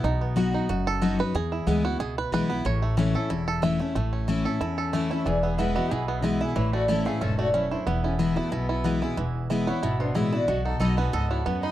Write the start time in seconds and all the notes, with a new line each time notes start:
Already playing: B3
0.04 B1 B2 D#4
0.21 B3
0.36 F#3 B3 D#4 F#4
0.54 D#4
0.69 F#1 F#2 F#4
0.87 A4
1.01 F#3 B3 D#4 F#4
1.19 D#4 F#4 B4
1.34 E2 G#4
1.52 E4
1.67 D2 E3 G#3 B3 E4
1.84 B3 E4 F#4
1.99 C#2 B2 G#4
2.18 B4
2.32 B1 E3 G#3 B3 E4 B4
2.49 B3 E4
2.65 A1 A2 C#5
2.82 A3
2.97 E3 A3 C#4 E4
3.14 C#4 E4 A4
3.30 E1 E2 E4
3.48 A4
3.62 E3 A3 C#4 E4 E5
3.79 A3 C#4 E4
3.95 A1 A2 A3
4.13 C#4
4.28 E3 A3 C#4 E4
4.45 C#4 E4 A4
4.61 E2 C#4 E4 A4
4.78 A4
4.93 E3 A3 C#4 E4
5.11 C#4 E4 C#5
5.25 E1 E2 E3 G#4 D5
5.43 B3 G#4 E5
5.58 E3 G#3 B3 E4 B4 F#5
5.76 B3 E4 F#4 D#5
5.90 B1 B2 E4 G#4 E5
6.08 B3 G#4
6.22 E3 G#3 B3 E4 B4
6.40 B3 E4 G#4 E5
6.56 A1 A2 E3 E4 C#5
6.73 A3 F#4 D5
6.88 E3 A3 C#4 E4 A4 E5
7.05 A3 C#4 E4 G#4 F5
7.21 E1 G#2 C#4 A4 E5
7.38 A3 F#4 D5
7.54 F#2 C#4 E4 C#5
7.71 D4 E4 C5
7.86 E1 E2 B3 E4 B4
8.04 C#4 E4 A4
8.19 E3 G#3 B3 E4 G#4
8.36 A3 B3 E4 F#4
8.52 B1 B2 B3 E4 G#4
8.69 E4
8.84 E3 G#3 B3 E4
9.02 G#3 B3 E4
9.17 E1 E2 E3
9.50 E3 G#3 B3 E4
9.67 B3 E4 C#5
9.83 G#1 B2 E4 B4
10.00 B3 D4 C5
10.15 A1 E3 G#3 B3 E4 C#5
10.32 B3 E4 F#4 D5
10.48 B1 B2 F#4 D#5
10.65 D#4 A4 F#5
10.80 B1 F#3 B3 D#4 F#4 A4 D#5 B5
10.97 B3 D#4 F#4 B4 G#5
11.13 C#2 G#2 A4 D#5 A5
11.30 E4 F#4 C#5
11.46 D#2 F#2 B3 B4 F#5
11.62 D#4 D#5 B5